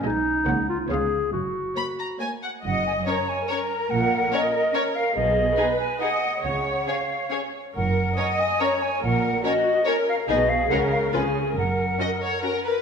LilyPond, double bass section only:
\new Staff \with { instrumentName = "Double bass section" } { \clef bass \time 3/4 \key fis \major \tempo 4 = 141 b,,4 cis,4 cis,4 | fis,,4 r2 | fis,,4 r2 | ais,,4 r2 |
b,,4 r2 | cis,4 r2 | fis,,4 r2 | ais,,4 r2 |
b,,4 cis,4 cis,4 | fis,,4 r2 | }